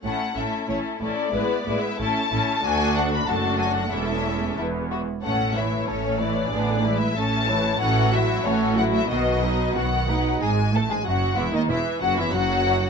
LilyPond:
<<
  \new Staff \with { instrumentName = "Violin section" } { \time 2/4 \key a \major \tempo 4 = 93 fis''8 e''8 cis''8 d''8~ | \tuplet 3/2 { d''4 e''8 } a''4 | gis''8 fis''16 b''16 a''8 gis''16 fis''16 | e''4 r4 |
fis''8 e''8 cis''8 d''8~ | \tuplet 3/2 { d''4 e''8 } a''4 | \key e \major fis''8 e''8 cis''8 fis''16 e''16 | dis''4 fis''4 |
gis''8 a''16 gis''16 fis''8 e''16 dis''16 | e''8 fis''16 e''16 fis''4 | }
  \new Staff \with { instrumentName = "Violin section" } { \time 2/4 \key a \major <e' a'>8 <e' a'>8 <e' a'>8 <e' a'>8 | <e' b'>8 <e' b'>8 <e' a'>8 <e' a'>8 | <fis' a'>4 <fis' a'>4 | <e' a'>4 e'8 fis'8 |
<cis' a'>8 <e' cis''>8 <cis' a'>8 <e' cis''>8 | <d' gis'>8 <e' b'>8 <cis' a'>8 <e' cis''>8 | \key e \major <fis' a'>8 <e' fis'>8 <fis' a'>8 <e' fis'>8 | fis'8 <dis' b'>8 fis'8 <dis' b'>8 |
gis'8 a'16 gis'16 fis'8 e'16 dis'16 | e'8 fis'16 e'16 fis'4 | }
  \new Staff \with { instrumentName = "Viola section" } { \time 2/4 \key a \major <a cis'>8 <a cis'>8 <a cis'>8 <a cis'>8 | <gis b>8 <gis b>8 <a cis'>8 <a cis'>8 | <a d'>4 <a d'>4 | <a cis'>4 <e b>8 r8 |
<a cis'>8 <e a>8 <a cis'>8 <e a>8 | <d b>8 <e gis>8 <a cis'>8 <e a>8 | \key e \major <e cis'>8 <fis a>8 <e cis'>8 <fis a>8 | <dis b>8 <fis dis'>8 <dis b>8 <fis dis'>8 |
gis8 a16 gis16 fis8 e16 dis16 | e8 fis16 e16 fis4 | }
  \new Staff \with { instrumentName = "Cello section" } { \clef bass \time 2/4 \key a \major a,8 a,8 a,8 a,8 | a,8 a,8 a,8 a,8 | d,4 fis,4 | e,4 e,8 r8 |
a,4 a,4 | a,4 a,4 | \key e \major a,4 a,4 | b,4 b,8 a,8 |
gis,8 a,16 gis,16 fis,8 e,16 dis,16 | e,8 fis,16 e,16 fis,4 | }
  \new Staff \with { instrumentName = "Double bass section" } { \clef bass \time 2/4 \key a \major a,,8 a,,8 a,,8 a,,8 | a,,8 a,,8 a,,8 a,,8 | d,4 fis,,4 | e,,4 e,,8 r8 |
a,,4 a,,4 | a,,4 a,,4 | \key e \major a,,4 a,,4 | b,,4 b,,4 |
gis,,8 a,,16 r16 fis,,8 e,,16 r16 | e,,8 fis,,16 r16 fis,,4 | }
>>